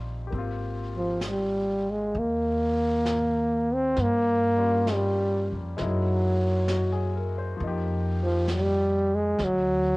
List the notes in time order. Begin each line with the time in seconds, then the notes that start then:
Already playing: A#1 G3 C4 C#4 D#4 F4
0.27 A#3 G4, brush sweep
0.32 G#1 C4
0.38 F4
0.97 F3
1.21 snare, hi-hat pedal
1.27 G3
1.90 G#3
2.12 D#2, brush sweep
2.19 A#3
3.06 snare, hi-hat pedal
3.74 C4
3.96 G2, brush sweep, snare
4.02 A#3
4.58 G3 A#3 C#4 F4
4.87 snare, hi-hat pedal
4.94 G3
5.52 F2
5.77 F#2 G#3 A#3 D#4, brush sweep, snare
5.81 E4
5.86 F#3
6.68 F#4, snare, hi-hat pedal
6.92 G#4
7.16 A#4
7.38 C5
7.57 F2 F3 A#3, brush sweep
7.64 D#4 G4
8.23 F3
8.48 snare, hi-hat pedal
8.53 G3
9.15 G#3
9.39 D2, brush sweep, snare
9.44 F#3